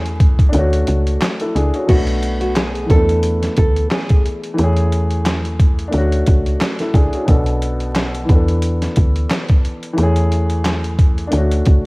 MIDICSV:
0, 0, Header, 1, 5, 480
1, 0, Start_track
1, 0, Tempo, 674157
1, 1344, Time_signature, 4, 2, 24, 8
1, 8444, End_track
2, 0, Start_track
2, 0, Title_t, "Nylon-string guitar"
2, 0, Program_c, 0, 24
2, 1341, Note_on_c, 0, 66, 99
2, 1693, Note_off_c, 0, 66, 0
2, 1715, Note_on_c, 0, 66, 72
2, 1812, Note_off_c, 0, 66, 0
2, 1827, Note_on_c, 0, 68, 82
2, 2042, Note_off_c, 0, 68, 0
2, 2069, Note_on_c, 0, 69, 78
2, 2518, Note_off_c, 0, 69, 0
2, 2546, Note_on_c, 0, 69, 70
2, 2761, Note_off_c, 0, 69, 0
2, 2784, Note_on_c, 0, 68, 71
2, 3000, Note_off_c, 0, 68, 0
2, 8444, End_track
3, 0, Start_track
3, 0, Title_t, "Upright piano"
3, 0, Program_c, 1, 0
3, 0, Control_c, 1, 64, 127
3, 0, Note_on_c, 1, 52, 91
3, 0, Note_on_c, 1, 57, 72
3, 0, Note_on_c, 1, 61, 76
3, 0, Note_on_c, 1, 68, 94
3, 348, Note_on_c, 1, 62, 79
3, 349, Note_off_c, 1, 52, 0
3, 360, Note_off_c, 1, 57, 0
3, 371, Note_on_c, 1, 57, 73
3, 373, Note_off_c, 1, 61, 0
3, 384, Note_off_c, 1, 68, 0
3, 394, Note_on_c, 1, 61, 72
3, 395, Control_c, 1, 64, 0
3, 417, Note_on_c, 1, 66, 85
3, 505, Control_c, 1, 64, 127
3, 860, Note_off_c, 1, 61, 0
3, 871, Note_off_c, 1, 66, 0
3, 1003, Note_on_c, 1, 69, 65
3, 1007, Note_on_c, 1, 64, 56
3, 1102, Note_off_c, 1, 62, 0
3, 1102, Note_off_c, 1, 69, 0
3, 1104, Note_off_c, 1, 64, 0
3, 1108, Note_on_c, 1, 68, 72
3, 1112, Note_on_c, 1, 62, 65
3, 1233, Note_off_c, 1, 68, 0
3, 1235, Note_off_c, 1, 62, 0
3, 1245, Note_on_c, 1, 66, 63
3, 1249, Note_on_c, 1, 61, 57
3, 1318, Note_off_c, 1, 57, 0
3, 1327, Note_on_c, 1, 47, 67
3, 1337, Note_on_c, 1, 59, 61
3, 1349, Note_on_c, 1, 62, 60
3, 1354, Control_c, 1, 64, 0
3, 1361, Note_on_c, 1, 57, 76
3, 1469, Note_off_c, 1, 66, 0
3, 1471, Note_off_c, 1, 61, 0
3, 1492, Control_c, 1, 64, 127
3, 2033, Note_on_c, 1, 52, 66
3, 2046, Note_off_c, 1, 59, 0
3, 2056, Note_off_c, 1, 47, 0
3, 2057, Note_on_c, 1, 59, 64
3, 2067, Note_off_c, 1, 62, 0
3, 2073, Note_off_c, 1, 57, 0
3, 2075, Control_c, 1, 64, 0
3, 2079, Note_on_c, 1, 62, 56
3, 2103, Note_on_c, 1, 57, 70
3, 2208, Control_c, 1, 64, 127
3, 3221, Note_off_c, 1, 52, 0
3, 3231, Note_on_c, 1, 52, 85
3, 3236, Note_off_c, 1, 59, 0
3, 3244, Note_off_c, 1, 57, 0
3, 3248, Note_off_c, 1, 62, 0
3, 3255, Note_on_c, 1, 57, 71
3, 3273, Control_c, 1, 64, 0
3, 3278, Note_on_c, 1, 61, 73
3, 3301, Note_on_c, 1, 68, 91
3, 3395, Control_c, 1, 64, 127
3, 4187, Note_on_c, 1, 62, 74
3, 4188, Note_off_c, 1, 52, 0
3, 4199, Note_off_c, 1, 57, 0
3, 4210, Note_on_c, 1, 57, 74
3, 4212, Note_off_c, 1, 61, 0
3, 4224, Note_off_c, 1, 68, 0
3, 4234, Control_c, 1, 64, 0
3, 4234, Note_on_c, 1, 61, 73
3, 4257, Note_on_c, 1, 66, 89
3, 4366, Control_c, 1, 64, 127
3, 4700, Note_off_c, 1, 61, 0
3, 4711, Note_off_c, 1, 66, 0
3, 4843, Note_on_c, 1, 69, 61
3, 4848, Note_on_c, 1, 64, 56
3, 4941, Note_off_c, 1, 62, 0
3, 4942, Note_off_c, 1, 69, 0
3, 4944, Note_off_c, 1, 64, 0
3, 4947, Note_on_c, 1, 68, 72
3, 4952, Note_on_c, 1, 62, 65
3, 5072, Note_off_c, 1, 68, 0
3, 5074, Note_off_c, 1, 62, 0
3, 5086, Note_on_c, 1, 66, 60
3, 5091, Note_on_c, 1, 61, 57
3, 5158, Note_off_c, 1, 57, 0
3, 5165, Note_on_c, 1, 47, 69
3, 5176, Note_on_c, 1, 59, 61
3, 5188, Note_on_c, 1, 62, 62
3, 5194, Control_c, 1, 64, 0
3, 5200, Note_on_c, 1, 69, 76
3, 5310, Note_off_c, 1, 66, 0
3, 5312, Note_off_c, 1, 61, 0
3, 5326, Control_c, 1, 64, 127
3, 5873, Note_on_c, 1, 52, 68
3, 5886, Note_off_c, 1, 59, 0
3, 5895, Note_off_c, 1, 47, 0
3, 5897, Note_on_c, 1, 59, 64
3, 5906, Note_off_c, 1, 62, 0
3, 5912, Note_off_c, 1, 69, 0
3, 5913, Control_c, 1, 64, 0
3, 5920, Note_on_c, 1, 62, 57
3, 5944, Note_on_c, 1, 69, 69
3, 6057, Control_c, 1, 64, 127
3, 7060, Note_off_c, 1, 52, 0
3, 7071, Note_on_c, 1, 52, 87
3, 7077, Note_off_c, 1, 59, 0
3, 7088, Note_off_c, 1, 62, 0
3, 7095, Note_on_c, 1, 57, 71
3, 7101, Note_off_c, 1, 69, 0
3, 7114, Control_c, 1, 64, 0
3, 7118, Note_on_c, 1, 61, 73
3, 7141, Note_on_c, 1, 68, 96
3, 7258, Control_c, 1, 64, 127
3, 8027, Note_on_c, 1, 62, 76
3, 8028, Note_off_c, 1, 52, 0
3, 8040, Note_off_c, 1, 57, 0
3, 8051, Note_on_c, 1, 57, 69
3, 8052, Note_off_c, 1, 61, 0
3, 8064, Note_off_c, 1, 68, 0
3, 8073, Control_c, 1, 64, 0
3, 8074, Note_on_c, 1, 61, 71
3, 8098, Note_on_c, 1, 66, 84
3, 8202, Control_c, 1, 64, 127
3, 8444, Note_off_c, 1, 57, 0
3, 8444, Note_off_c, 1, 61, 0
3, 8444, Note_off_c, 1, 62, 0
3, 8444, Note_off_c, 1, 66, 0
3, 8444, End_track
4, 0, Start_track
4, 0, Title_t, "FM bass"
4, 0, Program_c, 2, 39
4, 0, Note_on_c, 2, 40, 109
4, 357, Note_off_c, 2, 40, 0
4, 387, Note_on_c, 2, 38, 109
4, 594, Note_off_c, 2, 38, 0
4, 626, Note_on_c, 2, 37, 95
4, 834, Note_off_c, 2, 37, 0
4, 1107, Note_on_c, 2, 37, 95
4, 1221, Note_off_c, 2, 37, 0
4, 1347, Note_on_c, 2, 35, 107
4, 2037, Note_off_c, 2, 35, 0
4, 2065, Note_on_c, 2, 40, 91
4, 2481, Note_off_c, 2, 40, 0
4, 2550, Note_on_c, 2, 38, 89
4, 2755, Note_off_c, 2, 38, 0
4, 3269, Note_on_c, 2, 40, 112
4, 4198, Note_off_c, 2, 40, 0
4, 4228, Note_on_c, 2, 38, 110
4, 4434, Note_off_c, 2, 38, 0
4, 4469, Note_on_c, 2, 37, 93
4, 4675, Note_off_c, 2, 37, 0
4, 4943, Note_on_c, 2, 37, 91
4, 5059, Note_off_c, 2, 37, 0
4, 5187, Note_on_c, 2, 35, 105
4, 5877, Note_off_c, 2, 35, 0
4, 5906, Note_on_c, 2, 40, 93
4, 6321, Note_off_c, 2, 40, 0
4, 6388, Note_on_c, 2, 38, 89
4, 6595, Note_off_c, 2, 38, 0
4, 7107, Note_on_c, 2, 40, 111
4, 8037, Note_off_c, 2, 40, 0
4, 8066, Note_on_c, 2, 38, 109
4, 8274, Note_off_c, 2, 38, 0
4, 8309, Note_on_c, 2, 37, 94
4, 8444, Note_off_c, 2, 37, 0
4, 8444, End_track
5, 0, Start_track
5, 0, Title_t, "Drums"
5, 39, Note_on_c, 9, 42, 54
5, 110, Note_off_c, 9, 42, 0
5, 143, Note_on_c, 9, 36, 96
5, 144, Note_on_c, 9, 42, 76
5, 214, Note_off_c, 9, 36, 0
5, 215, Note_off_c, 9, 42, 0
5, 277, Note_on_c, 9, 36, 86
5, 280, Note_on_c, 9, 42, 51
5, 348, Note_off_c, 9, 36, 0
5, 351, Note_off_c, 9, 42, 0
5, 377, Note_on_c, 9, 42, 105
5, 449, Note_off_c, 9, 42, 0
5, 519, Note_on_c, 9, 42, 64
5, 590, Note_off_c, 9, 42, 0
5, 619, Note_on_c, 9, 42, 83
5, 690, Note_off_c, 9, 42, 0
5, 760, Note_on_c, 9, 42, 54
5, 831, Note_off_c, 9, 42, 0
5, 865, Note_on_c, 9, 39, 100
5, 868, Note_on_c, 9, 38, 118
5, 871, Note_on_c, 9, 42, 89
5, 937, Note_off_c, 9, 39, 0
5, 939, Note_off_c, 9, 38, 0
5, 942, Note_off_c, 9, 42, 0
5, 994, Note_on_c, 9, 42, 53
5, 1065, Note_off_c, 9, 42, 0
5, 1110, Note_on_c, 9, 42, 62
5, 1182, Note_off_c, 9, 42, 0
5, 1238, Note_on_c, 9, 42, 53
5, 1309, Note_off_c, 9, 42, 0
5, 1344, Note_on_c, 9, 42, 85
5, 1344, Note_on_c, 9, 49, 92
5, 1345, Note_on_c, 9, 36, 108
5, 1415, Note_off_c, 9, 42, 0
5, 1416, Note_off_c, 9, 36, 0
5, 1416, Note_off_c, 9, 49, 0
5, 1473, Note_on_c, 9, 42, 57
5, 1544, Note_off_c, 9, 42, 0
5, 1585, Note_on_c, 9, 42, 69
5, 1656, Note_off_c, 9, 42, 0
5, 1715, Note_on_c, 9, 42, 46
5, 1786, Note_off_c, 9, 42, 0
5, 1821, Note_on_c, 9, 42, 98
5, 1825, Note_on_c, 9, 39, 92
5, 1827, Note_on_c, 9, 38, 111
5, 1892, Note_off_c, 9, 42, 0
5, 1896, Note_off_c, 9, 39, 0
5, 1898, Note_off_c, 9, 38, 0
5, 1961, Note_on_c, 9, 42, 52
5, 2032, Note_off_c, 9, 42, 0
5, 2064, Note_on_c, 9, 36, 93
5, 2065, Note_on_c, 9, 42, 76
5, 2135, Note_off_c, 9, 36, 0
5, 2136, Note_off_c, 9, 42, 0
5, 2201, Note_on_c, 9, 42, 50
5, 2272, Note_off_c, 9, 42, 0
5, 2299, Note_on_c, 9, 42, 98
5, 2370, Note_off_c, 9, 42, 0
5, 2440, Note_on_c, 9, 42, 64
5, 2443, Note_on_c, 9, 38, 36
5, 2512, Note_off_c, 9, 42, 0
5, 2514, Note_off_c, 9, 38, 0
5, 2540, Note_on_c, 9, 42, 82
5, 2547, Note_on_c, 9, 36, 89
5, 2611, Note_off_c, 9, 42, 0
5, 2619, Note_off_c, 9, 36, 0
5, 2681, Note_on_c, 9, 42, 52
5, 2752, Note_off_c, 9, 42, 0
5, 2785, Note_on_c, 9, 39, 94
5, 2787, Note_on_c, 9, 38, 120
5, 2791, Note_on_c, 9, 42, 89
5, 2856, Note_off_c, 9, 39, 0
5, 2859, Note_off_c, 9, 38, 0
5, 2862, Note_off_c, 9, 42, 0
5, 2914, Note_on_c, 9, 42, 55
5, 2922, Note_on_c, 9, 36, 95
5, 2986, Note_off_c, 9, 42, 0
5, 2993, Note_off_c, 9, 36, 0
5, 3030, Note_on_c, 9, 42, 61
5, 3101, Note_off_c, 9, 42, 0
5, 3158, Note_on_c, 9, 42, 53
5, 3229, Note_off_c, 9, 42, 0
5, 3264, Note_on_c, 9, 42, 88
5, 3336, Note_off_c, 9, 42, 0
5, 3393, Note_on_c, 9, 42, 60
5, 3464, Note_off_c, 9, 42, 0
5, 3506, Note_on_c, 9, 42, 69
5, 3577, Note_off_c, 9, 42, 0
5, 3635, Note_on_c, 9, 42, 47
5, 3706, Note_off_c, 9, 42, 0
5, 3742, Note_on_c, 9, 42, 99
5, 3745, Note_on_c, 9, 39, 90
5, 3747, Note_on_c, 9, 38, 114
5, 3813, Note_off_c, 9, 42, 0
5, 3817, Note_off_c, 9, 39, 0
5, 3819, Note_off_c, 9, 38, 0
5, 3880, Note_on_c, 9, 42, 52
5, 3951, Note_off_c, 9, 42, 0
5, 3984, Note_on_c, 9, 36, 95
5, 3985, Note_on_c, 9, 42, 75
5, 4055, Note_off_c, 9, 36, 0
5, 4056, Note_off_c, 9, 42, 0
5, 4121, Note_on_c, 9, 42, 50
5, 4192, Note_off_c, 9, 42, 0
5, 4219, Note_on_c, 9, 42, 100
5, 4290, Note_off_c, 9, 42, 0
5, 4359, Note_on_c, 9, 42, 62
5, 4431, Note_off_c, 9, 42, 0
5, 4460, Note_on_c, 9, 42, 83
5, 4468, Note_on_c, 9, 36, 86
5, 4531, Note_off_c, 9, 42, 0
5, 4539, Note_off_c, 9, 36, 0
5, 4600, Note_on_c, 9, 42, 50
5, 4671, Note_off_c, 9, 42, 0
5, 4706, Note_on_c, 9, 39, 100
5, 4708, Note_on_c, 9, 38, 120
5, 4711, Note_on_c, 9, 42, 86
5, 4777, Note_off_c, 9, 39, 0
5, 4779, Note_off_c, 9, 38, 0
5, 4782, Note_off_c, 9, 42, 0
5, 4834, Note_on_c, 9, 42, 54
5, 4842, Note_on_c, 9, 38, 39
5, 4905, Note_off_c, 9, 42, 0
5, 4913, Note_off_c, 9, 38, 0
5, 4942, Note_on_c, 9, 36, 94
5, 4949, Note_on_c, 9, 42, 60
5, 5013, Note_off_c, 9, 36, 0
5, 5021, Note_off_c, 9, 42, 0
5, 5077, Note_on_c, 9, 42, 54
5, 5148, Note_off_c, 9, 42, 0
5, 5183, Note_on_c, 9, 42, 86
5, 5185, Note_on_c, 9, 36, 114
5, 5254, Note_off_c, 9, 42, 0
5, 5256, Note_off_c, 9, 36, 0
5, 5313, Note_on_c, 9, 42, 58
5, 5384, Note_off_c, 9, 42, 0
5, 5426, Note_on_c, 9, 42, 67
5, 5497, Note_off_c, 9, 42, 0
5, 5555, Note_on_c, 9, 42, 46
5, 5626, Note_off_c, 9, 42, 0
5, 5662, Note_on_c, 9, 42, 98
5, 5665, Note_on_c, 9, 39, 90
5, 5667, Note_on_c, 9, 38, 110
5, 5733, Note_off_c, 9, 42, 0
5, 5736, Note_off_c, 9, 39, 0
5, 5738, Note_off_c, 9, 38, 0
5, 5801, Note_on_c, 9, 42, 51
5, 5872, Note_off_c, 9, 42, 0
5, 5904, Note_on_c, 9, 36, 92
5, 5905, Note_on_c, 9, 42, 73
5, 5975, Note_off_c, 9, 36, 0
5, 5976, Note_off_c, 9, 42, 0
5, 6041, Note_on_c, 9, 42, 50
5, 6112, Note_off_c, 9, 42, 0
5, 6139, Note_on_c, 9, 42, 99
5, 6210, Note_off_c, 9, 42, 0
5, 6280, Note_on_c, 9, 42, 63
5, 6282, Note_on_c, 9, 38, 36
5, 6351, Note_off_c, 9, 42, 0
5, 6353, Note_off_c, 9, 38, 0
5, 6379, Note_on_c, 9, 42, 79
5, 6387, Note_on_c, 9, 36, 87
5, 6450, Note_off_c, 9, 42, 0
5, 6458, Note_off_c, 9, 36, 0
5, 6520, Note_on_c, 9, 42, 52
5, 6592, Note_off_c, 9, 42, 0
5, 6626, Note_on_c, 9, 39, 96
5, 6628, Note_on_c, 9, 38, 121
5, 6631, Note_on_c, 9, 42, 85
5, 6697, Note_off_c, 9, 39, 0
5, 6699, Note_off_c, 9, 38, 0
5, 6702, Note_off_c, 9, 42, 0
5, 6754, Note_on_c, 9, 42, 54
5, 6762, Note_on_c, 9, 36, 96
5, 6825, Note_off_c, 9, 42, 0
5, 6833, Note_off_c, 9, 36, 0
5, 6870, Note_on_c, 9, 42, 58
5, 6941, Note_off_c, 9, 42, 0
5, 6998, Note_on_c, 9, 42, 51
5, 7069, Note_off_c, 9, 42, 0
5, 7104, Note_on_c, 9, 42, 88
5, 7175, Note_off_c, 9, 42, 0
5, 7233, Note_on_c, 9, 42, 60
5, 7304, Note_off_c, 9, 42, 0
5, 7346, Note_on_c, 9, 42, 70
5, 7417, Note_off_c, 9, 42, 0
5, 7474, Note_on_c, 9, 42, 47
5, 7545, Note_off_c, 9, 42, 0
5, 7581, Note_on_c, 9, 42, 99
5, 7585, Note_on_c, 9, 39, 93
5, 7587, Note_on_c, 9, 38, 113
5, 7653, Note_off_c, 9, 42, 0
5, 7656, Note_off_c, 9, 39, 0
5, 7658, Note_off_c, 9, 38, 0
5, 7720, Note_on_c, 9, 42, 52
5, 7791, Note_off_c, 9, 42, 0
5, 7823, Note_on_c, 9, 36, 96
5, 7823, Note_on_c, 9, 42, 72
5, 7894, Note_off_c, 9, 36, 0
5, 7894, Note_off_c, 9, 42, 0
5, 7960, Note_on_c, 9, 42, 47
5, 8031, Note_off_c, 9, 42, 0
5, 8058, Note_on_c, 9, 42, 100
5, 8129, Note_off_c, 9, 42, 0
5, 8199, Note_on_c, 9, 42, 64
5, 8270, Note_off_c, 9, 42, 0
5, 8299, Note_on_c, 9, 42, 82
5, 8307, Note_on_c, 9, 36, 88
5, 8370, Note_off_c, 9, 42, 0
5, 8378, Note_off_c, 9, 36, 0
5, 8444, End_track
0, 0, End_of_file